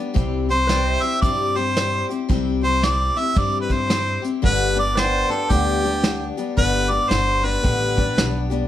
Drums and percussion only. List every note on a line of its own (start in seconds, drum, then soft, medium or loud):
0.16 kick loud
0.16 closed hi-hat medium
0.50 closed hi-hat medium
0.69 snare medium
0.69 closed hi-hat medium
1.03 closed hi-hat medium
1.23 kick loud
1.23 closed hi-hat medium
1.56 closed hi-hat medium
1.77 snare loud
1.77 closed hi-hat medium
2.10 closed hi-hat medium
2.30 kick loud
2.30 closed hi-hat medium
2.64 closed hi-hat soft
2.83 snare medium
2.83 closed hi-hat medium
3.17 closed hi-hat medium
3.36 kick loud
3.36 closed hi-hat medium
3.70 kick medium
3.70 closed hi-hat medium
3.90 snare loud
3.90 closed hi-hat medium
4.24 closed hi-hat medium
4.44 kick medium
4.44 closed hi-hat medium
4.78 closed hi-hat medium
4.97 snare loud
4.97 closed hi-hat medium
5.31 closed hi-hat medium
5.50 kick loud
5.50 closed hi-hat medium
5.84 closed hi-hat medium
6.04 snare loud
6.04 closed hi-hat medium
6.38 closed hi-hat medium
6.58 kick loud
6.58 closed hi-hat medium
6.91 closed hi-hat soft
7.11 snare medium
7.11 closed hi-hat medium
7.45 closed hi-hat medium
7.64 kick medium
7.64 closed hi-hat medium
7.98 kick medium
7.98 closed hi-hat medium
8.18 snare loud
8.18 closed hi-hat medium
8.51 closed hi-hat medium